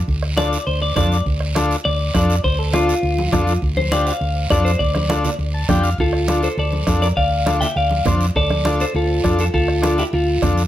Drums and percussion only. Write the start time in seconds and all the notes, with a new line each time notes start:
0.08 bombo low, high conga, long guiro
0.23 bombo rim
0.37 bombo rim, high conga, short guiro
0.53 short guiro
0.67 high conga, long guiro
0.96 bombo low, bombo rim, high conga, low conga, short guiro
1.12 short guiro
1.26 bombo low, high conga, long guiro
1.40 bombo rim
1.55 bombo rim, high conga, short guiro
1.71 short guiro
1.86 high conga, long guiro
2.14 bombo low, bombo rim, high conga, short guiro
2.30 short guiro
2.44 bombo low, high conga, long guiro
2.73 bombo rim, high conga, short guiro
2.89 short guiro
3.03 high conga, long guiro
3.18 high conga
3.33 bombo low, bombo rim, high conga, low conga, short guiro
3.47 short guiro
3.62 bombo low, high conga, long guiro
3.77 high conga
3.92 bombo rim, high conga, short guiro
4.07 short guiro
4.21 high conga, long guiro
4.50 bombo low, bombo rim, high conga, short guiro
4.66 short guiro
4.80 bombo low, high conga, long guiro
4.95 bombo rim, high conga
5.10 bombo rim, high conga, short guiro
5.25 low conga, short guiro
5.39 high conga, long guiro
5.69 bombo low, bombo rim, high conga, low conga, short guiro
5.84 short guiro
5.98 bombo low, high conga, long guiro
6.13 bombo rim
6.28 bombo rim, high conga, short guiro
6.43 short guiro
6.58 high conga, long guiro
6.72 high conga
6.87 bombo low, bombo rim, high conga, short guiro
7.02 short guiro
7.17 bombo low, high conga, long guiro
7.46 bombo rim, high conga, short guiro
7.61 low conga, short guiro
7.76 high conga, long guiro
7.91 high conga
8.06 bombo low, bombo rim, high conga, low conga, short guiro
8.21 short guiro
8.36 bombo low, high conga, long guiro
8.50 bombo rim, high conga
8.65 bombo rim, high conga, short guiro
8.80 short guiro
8.95 high conga, long guiro
9.24 bombo low, bombo rim, high conga, short guiro
9.39 short guiro
9.54 bombo low, high conga, long guiro
9.68 bombo rim
9.83 bombo rim, high conga, short guiro
9.98 short guiro
10.13 high conga, long guiro
10.42 bombo low, bombo rim, high conga, low conga, short guiro
10.57 short guiro